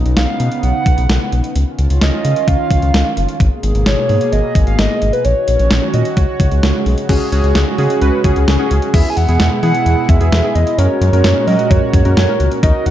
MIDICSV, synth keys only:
0, 0, Header, 1, 2, 480
1, 0, Start_track
1, 0, Tempo, 461538
1, 1616, Time_signature, 4, 2, 24, 8
1, 13421, End_track
2, 0, Start_track
2, 0, Title_t, "Synth keys"
2, 0, Program_c, 0, 88
2, 7376, Note_on_c, 0, 61, 88
2, 7376, Note_on_c, 0, 66, 81
2, 7377, Note_on_c, 0, 68, 98
2, 7589, Note_off_c, 0, 61, 0
2, 7589, Note_off_c, 0, 66, 0
2, 7590, Note_off_c, 0, 68, 0
2, 7617, Note_on_c, 0, 61, 91
2, 7617, Note_on_c, 0, 66, 81
2, 7617, Note_on_c, 0, 68, 97
2, 8042, Note_off_c, 0, 68, 0
2, 8043, Note_off_c, 0, 61, 0
2, 8043, Note_off_c, 0, 66, 0
2, 8096, Note_on_c, 0, 68, 99
2, 8097, Note_on_c, 0, 61, 93
2, 8097, Note_on_c, 0, 66, 85
2, 8309, Note_off_c, 0, 68, 0
2, 8310, Note_off_c, 0, 61, 0
2, 8310, Note_off_c, 0, 66, 0
2, 8338, Note_on_c, 0, 61, 92
2, 8338, Note_on_c, 0, 66, 83
2, 8338, Note_on_c, 0, 71, 101
2, 8550, Note_off_c, 0, 61, 0
2, 8550, Note_off_c, 0, 66, 0
2, 8550, Note_off_c, 0, 71, 0
2, 8577, Note_on_c, 0, 61, 87
2, 8577, Note_on_c, 0, 68, 97
2, 8578, Note_on_c, 0, 66, 82
2, 8896, Note_off_c, 0, 61, 0
2, 8896, Note_off_c, 0, 68, 0
2, 8897, Note_off_c, 0, 66, 0
2, 8936, Note_on_c, 0, 61, 93
2, 8936, Note_on_c, 0, 68, 98
2, 8937, Note_on_c, 0, 66, 82
2, 9256, Note_off_c, 0, 61, 0
2, 9256, Note_off_c, 0, 66, 0
2, 9256, Note_off_c, 0, 68, 0
2, 9298, Note_on_c, 0, 59, 74
2, 9298, Note_on_c, 0, 64, 73
2, 9299, Note_on_c, 0, 68, 85
2, 9616, Note_off_c, 0, 64, 0
2, 9617, Note_off_c, 0, 59, 0
2, 9617, Note_off_c, 0, 68, 0
2, 9657, Note_on_c, 0, 59, 76
2, 9658, Note_on_c, 0, 68, 83
2, 9659, Note_on_c, 0, 64, 72
2, 9976, Note_off_c, 0, 59, 0
2, 9977, Note_off_c, 0, 64, 0
2, 9977, Note_off_c, 0, 68, 0
2, 10016, Note_on_c, 0, 59, 80
2, 10016, Note_on_c, 0, 64, 70
2, 10016, Note_on_c, 0, 68, 89
2, 10548, Note_off_c, 0, 64, 0
2, 10548, Note_off_c, 0, 68, 0
2, 10549, Note_off_c, 0, 59, 0
2, 10615, Note_on_c, 0, 68, 84
2, 10617, Note_on_c, 0, 59, 75
2, 10617, Note_on_c, 0, 64, 69
2, 10829, Note_off_c, 0, 59, 0
2, 10829, Note_off_c, 0, 68, 0
2, 10830, Note_off_c, 0, 64, 0
2, 10858, Note_on_c, 0, 59, 78
2, 10859, Note_on_c, 0, 68, 87
2, 10860, Note_on_c, 0, 64, 70
2, 11177, Note_off_c, 0, 59, 0
2, 11177, Note_off_c, 0, 68, 0
2, 11178, Note_off_c, 0, 64, 0
2, 11217, Note_on_c, 0, 61, 80
2, 11217, Note_on_c, 0, 66, 73
2, 11218, Note_on_c, 0, 70, 85
2, 11536, Note_off_c, 0, 61, 0
2, 11536, Note_off_c, 0, 66, 0
2, 11537, Note_off_c, 0, 70, 0
2, 11576, Note_on_c, 0, 61, 78
2, 11576, Note_on_c, 0, 66, 72
2, 11576, Note_on_c, 0, 70, 87
2, 11895, Note_off_c, 0, 66, 0
2, 11896, Note_off_c, 0, 61, 0
2, 11896, Note_off_c, 0, 70, 0
2, 11935, Note_on_c, 0, 66, 72
2, 11935, Note_on_c, 0, 70, 91
2, 11936, Note_on_c, 0, 61, 78
2, 12468, Note_off_c, 0, 61, 0
2, 12468, Note_off_c, 0, 66, 0
2, 12468, Note_off_c, 0, 70, 0
2, 12535, Note_on_c, 0, 66, 72
2, 12535, Note_on_c, 0, 70, 87
2, 12536, Note_on_c, 0, 61, 78
2, 12749, Note_off_c, 0, 61, 0
2, 12749, Note_off_c, 0, 66, 0
2, 12749, Note_off_c, 0, 70, 0
2, 12775, Note_on_c, 0, 61, 81
2, 12775, Note_on_c, 0, 66, 71
2, 12775, Note_on_c, 0, 70, 84
2, 13095, Note_off_c, 0, 61, 0
2, 13095, Note_off_c, 0, 66, 0
2, 13095, Note_off_c, 0, 70, 0
2, 13136, Note_on_c, 0, 66, 68
2, 13136, Note_on_c, 0, 70, 85
2, 13137, Note_on_c, 0, 63, 76
2, 13421, Note_off_c, 0, 63, 0
2, 13421, Note_off_c, 0, 66, 0
2, 13421, Note_off_c, 0, 70, 0
2, 13421, End_track
0, 0, End_of_file